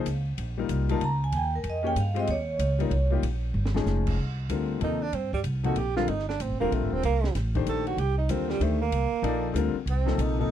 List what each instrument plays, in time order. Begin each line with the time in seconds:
0.05 upright bass C#2, hi-hat pedal, ride
0.38 upright bass A#1, ride
0.58 grand piano G3 A#3 D#4 F4 A#4
0.69 upright bass C2, hi-hat pedal, ride
0.89 grand piano G3 A#3 D#4 F4 A#4, vibraphone A5, ride
1.00 upright bass C#2, ride
1.04 vibraphone A#5
1.24 vibraphone G#5
1.32 upright bass D#2, ride
1.36 vibraphone G5
1.55 vibraphone A#4
1.64 upright bass F2, ride
1.70 vibraphone D#5
1.83 grand piano A#3 C#4 G4 G#4 C#5, vibraphone G5
1.95 upright bass G2, hi-hat pedal, ride
2.00 vibraphone F5
2.14 grand piano G#3 C4 F4 G4 C5, ride
2.19 vibraphone D#5
2.27 upright bass D#2, vibraphone C#5, ride
2.59 upright bass C#2, hi-hat pedal, ride
2.79 grand piano G3 A#3 D#4 F4 A#4, ride
2.91 upright bass C2, ride
3.10 grand piano G3 A#3 D#4 F4 G4
3.22 upright bass A#1, ride
3.54 upright bass G1
3.66 snare
3.74 grand piano F3 G#3 C#4 D#4 G#4, snare
3.86 upright bass F1, snare, hi-hat pedal
4.07 kick, crash
4.17 upright bass C2
4.49 upright bass D2, grand piano D3 G3 C4 F4 A#4, hi-hat pedal, ride
4.80 upright bass D#2, grand piano C3 F3 A#3 D#4 A4, tenor saxophone D#4, ride
5.01 tenor saxophone D4
5.12 upright bass G2, tenor saxophone C4, ride
5.33 tenor saxophone G3, kick
5.43 upright bass C2, hi-hat pedal, ride
5.64 grand piano C3 F3 A#3 D#4 A4, tenor saxophone F#4, ride
5.76 upright bass A#1, tenor saxophone G4, ride
5.96 grand piano D3 G3 C4 F4 A#4, tenor saxophone F4, snare
6.07 upright bass G1, tenor saxophone D#4, ride
6.19 snare
6.29 tenor saxophone D4, snare
6.40 upright bass A1, tenor saxophone C4, hi-hat pedal, ride
6.50 upright bass G1
6.60 upright bass D#1, grand piano D3 G3 C4 F4 A#4, tenor saxophone A#3
6.72 upright bass A#1, tenor saxophone A3, ride
6.82 upright bass G1
6.93 upright bass D#1, tenor saxophone C4
7.03 upright bass C2, tenor saxophone A#3, ride
7.24 snare
7.35 upright bass A1, snare, hi-hat pedal, ride
7.55 grand piano D#3 A3 D4 G4 C5, kick, ride
7.66 upright bass A#1, tenor saxophone A4, hi-hat pedal, ride
7.87 tenor saxophone F#4, ride
7.97 upright bass C2, tenor saxophone G4, ride
8.18 tenor saxophone D#4
8.29 upright bass D#2, grand piano D3 G3 C4 F4 A#4, tenor saxophone C4, hi-hat pedal, ride
8.49 tenor saxophone G3, snare
8.60 upright bass D2, grand piano D#3 A3 D4 G4 C5, tenor saxophone A3, ride
8.82 tenor saxophone A#3
8.91 upright bass C2, ride
9.12 muted upright bass stroke
9.22 upright bass A#1, grand piano F3 A#3 D#4 A4 D5, ride
9.53 upright bass D2, grand piano D3 G3 C4 F4 A#4, hi-hat pedal, ride
9.74 muted upright bass stroke
9.86 upright bass C2, tenor saxophone C4, ride
10.06 grand piano C3 F3 A#3 D#4 A4, snare
10.18 upright bass A#1, tenor saxophone D#4, hi-hat pedal, ride
10.38 grand piano C3 F3 A#3 D#4 A4, tenor saxophone D#4